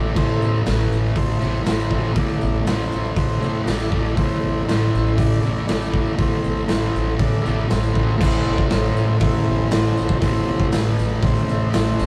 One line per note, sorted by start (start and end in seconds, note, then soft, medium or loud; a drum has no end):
0.00 0.14 A1 medium
0.00 0.13 A2 loud
0.00 0.16 E3 medium
0.00 0.18 A3 medium
0.00 0.11 E4 medium
0.00 0.11 A4 medium
0.00 0.11 D5 medium
0.14 0.39 A1 loud
0.14 0.63 A2 medium
0.14 0.65 E3 medium
0.14 0.61 E4 medium
0.14 0.61 A4 medium
0.14 0.61 C5 loud
0.14 kick loud
0.14 tambourine soft
0.14 crash medium
0.18 0.67 A3 loud
0.29 tambourine soft
0.41 0.63 A1 medium
0.41 tambourine medium
0.55 tambourine soft
0.63 0.89 A1 loud
0.63 1.64 A2 medium
0.63 1.44 E3 medium
0.63 1.11 E4 medium
0.63 snare loud
0.63 open hi-hat medium
0.63 tambourine loud
0.68 1.39 A3 medium
0.68 1.12 A4 medium
0.68 1.12 B4 medium
0.91 1.13 A1 medium
0.91 tambourine medium
1.06 tambourine soft
1.16 1.38 A1 medium
1.16 1.61 E4 medium
1.16 1.61 A4 medium
1.16 1.62 C5 medium
1.16 kick loud
1.16 open hi-hat medium
1.16 tambourine soft
1.39 1.63 A1 medium
1.39 1.69 A3 medium
1.39 tambourine medium
1.44 1.67 E3 medium
1.54 tambourine soft
1.65 2.11 A1 medium
1.65 2.13 A2 medium
1.65 1.94 E3 medium
1.65 2.12 E4 medium
1.65 2.12 A4 medium
1.65 2.12 C5 medium
1.65 snare loud
1.65 open hi-hat medium
1.65 tambourine loud
1.70 1.89 A3 loud
1.80 tambourine medium
1.89 2.19 A3 medium
1.89 kick medium
1.94 2.16 E3 medium
2.05 tambourine soft
2.14 2.38 A1 medium
2.14 2.64 A2 medium
2.14 2.66 E3 loud
2.14 2.61 E4 medium
2.14 2.62 A4 medium
2.14 2.62 D5 loud
2.14 kick loud
2.14 open hi-hat medium
2.14 tambourine soft
2.19 2.68 A3 medium
2.29 tambourine soft
2.41 2.64 A1 medium
2.41 tambourine medium
2.55 tambourine soft
2.64 2.89 A1 loud
2.64 3.66 A2 medium
2.64 3.44 E3 medium
2.64 3.12 E4 medium
2.64 3.12 A4 medium
2.64 snare loud
2.64 open hi-hat medium
2.64 tambourine loud
2.68 3.39 A3 medium
2.68 3.12 C5 medium
2.91 3.13 A1 medium
2.91 tambourine medium
3.05 tambourine soft
3.16 3.39 A1 medium
3.16 3.61 E4 medium
3.16 3.62 A4 medium
3.16 3.62 C5 medium
3.16 kick loud
3.16 open hi-hat medium
3.16 tambourine soft
3.40 3.64 A1 medium
3.40 3.70 A3 medium
3.40 tambourine medium
3.45 3.68 E3 medium
3.54 tambourine soft
3.66 3.89 A1 medium
3.66 4.14 A2 medium
3.66 3.94 E3 medium
3.66 4.13 E4 medium
3.66 4.12 A4 medium
3.66 4.12 D5 medium
3.66 snare loud
3.66 open hi-hat medium
3.66 tambourine loud
3.71 3.90 A3 loud
3.80 tambourine medium
3.90 4.14 A1 medium
3.90 4.19 A3 medium
3.90 kick medium
3.95 4.17 E3 medium
4.06 tambourine soft
4.14 4.40 A1 medium
4.14 4.64 A2 medium
4.14 4.68 E3 loud
4.14 4.62 E4 loud
4.14 4.62 A4 medium
4.14 4.62 C5 loud
4.14 kick loud
4.14 open hi-hat medium
4.19 4.70 A3 loud
4.19 tambourine soft
4.32 tambourine soft
4.43 4.65 A1 medium
4.57 tambourine soft
4.65 4.90 A1 loud
4.65 5.66 A2 medium
4.65 5.45 E3 medium
4.65 5.12 E4 medium
4.65 5.13 A4 medium
4.65 5.13 C5 medium
4.65 open hi-hat medium
4.69 5.41 A3 medium
4.69 snare loud
4.69 tambourine medium
4.83 tambourine soft
4.93 5.15 A1 medium
4.93 tambourine medium
5.07 tambourine soft
5.15 5.40 A1 loud
5.15 5.62 E4 medium
5.15 5.62 A4 medium
5.15 5.62 D5 loud
5.15 kick loud
5.15 open hi-hat medium
5.20 tambourine soft
5.42 5.66 A1 medium
5.42 5.71 A3 medium
5.42 tambourine medium
5.46 5.68 E3 medium
5.57 tambourine soft
5.66 6.13 A1 medium
5.66 6.16 A2 loud
5.66 5.96 E3 loud
5.66 6.12 E4 medium
5.66 6.13 A4 medium
5.66 6.13 D5 medium
5.66 snare loud
5.66 open hi-hat medium
5.66 tambourine loud
5.71 5.91 A3 loud
5.82 tambourine medium
5.91 6.20 A3 medium
5.91 kick medium
5.96 6.18 E3 medium
6.06 tambourine soft
6.16 6.41 A1 medium
6.16 6.65 A2 medium
6.16 6.68 E3 medium
6.16 6.63 E4 medium
6.16 6.64 A4 medium
6.16 6.64 C5 medium
6.16 kick loud
6.16 open hi-hat medium
6.16 tambourine soft
6.21 6.70 A3 medium
6.31 tambourine soft
6.43 6.66 A1 medium
6.43 tambourine medium
6.57 tambourine soft
6.66 6.91 A1 medium
6.66 7.68 A2 medium
6.66 7.46 E3 medium
6.66 7.14 E4 medium
6.66 7.15 A4 medium
6.66 7.15 C5 medium
6.66 snare loud
6.66 open hi-hat medium
6.66 tambourine loud
6.72 7.41 A3 medium
6.94 7.17 A1 medium
6.94 tambourine medium
7.09 tambourine soft
7.18 7.42 A1 medium
7.18 7.64 E4 medium
7.18 7.65 A4 medium
7.18 7.65 D5 medium
7.18 kick loud
7.18 open hi-hat medium
7.18 tambourine soft
7.34 tambourine soft
7.43 7.67 A1 medium
7.43 7.73 A3 medium
7.43 tambourine medium
7.48 7.70 E3 medium
7.58 tambourine soft
7.69 7.93 A1 medium
7.69 8.17 A2 medium
7.69 7.97 E3 medium
7.69 8.16 E4 medium
7.69 8.15 A4 medium
7.69 8.15 C5 medium
7.69 snare loud
7.69 open hi-hat medium
7.69 tambourine loud
7.74 7.92 A3 loud
7.83 tambourine medium
7.93 8.18 A1 medium
7.93 8.18 A3 medium
7.93 kick medium
7.93 tambourine soft
7.98 8.20 E3 medium
8.08 tambourine soft
8.18 8.40 A1 loud
8.18 10.18 A2 medium
8.18 10.22 E3 medium
8.18 8.65 E4 loud
8.18 8.65 A4 medium
8.18 8.65 C5 loud
8.18 kick loud
8.18 crash loud
8.18 tambourine medium
8.23 10.22 A3 loud
8.46 8.65 A1 medium
8.46 tambourine soft
8.58 kick medium
8.58 tambourine soft
8.70 8.90 A1 loud
8.70 9.16 E4 medium
8.70 9.17 A4 medium
8.70 9.17 C5 medium
8.70 snare loud
8.70 open hi-hat medium
8.70 tambourine loud
8.96 9.15 A1 medium
8.96 tambourine medium
9.20 9.40 A1 medium
9.20 9.67 E4 medium
9.20 9.67 A4 medium
9.20 9.67 C5 loud
9.20 kick loud
9.20 open hi-hat medium
9.47 9.66 A1 medium
9.71 9.91 A1 medium
9.71 10.17 E4 medium
9.71 10.18 A4 medium
9.71 10.18 C5 medium
9.71 snare loud
9.71 open hi-hat medium
9.71 tambourine loud
9.97 10.16 A1 medium
9.97 tambourine medium
10.09 kick medium
10.19 10.41 A1 loud
10.19 12.06 A2 medium
10.19 12.06 E3 loud
10.19 kick loud
10.19 open hi-hat medium
10.19 tambourine medium
10.24 12.06 A3 medium
10.24 10.68 E4 medium
10.24 10.69 A4 medium
10.24 10.68 C5 loud
10.48 10.67 A1 loud
10.60 kick medium
10.60 tambourine soft
10.72 10.92 A1 loud
10.72 11.18 E4 medium
10.72 11.18 A4 medium
10.72 11.19 B4 medium
10.72 snare loud
10.72 open hi-hat medium
10.72 tambourine loud
10.97 11.16 A1 medium
10.97 tambourine medium
11.23 11.42 A1 loud
11.23 11.68 E4 medium
11.23 11.69 A4 medium
11.23 11.69 C5 medium
11.23 kick loud
11.23 open hi-hat medium
11.48 11.67 A1 medium
11.48 tambourine medium
11.73 11.92 A1 medium
11.73 12.06 E4 medium
11.73 12.06 A4 medium
11.73 12.06 C5 loud
11.73 snare loud
11.73 open hi-hat medium
11.73 tambourine loud
11.98 12.06 A1 medium
11.98 tambourine loud